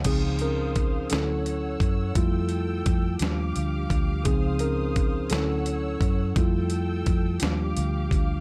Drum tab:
CC |x-----|------|------|------|
HH |xxxxxx|xxxxxx|xxxxxx|xxxxxx|
SD |---o--|---o--|---o--|---o--|
BD |o-o--o|o-o--o|o-o--o|o-o--o|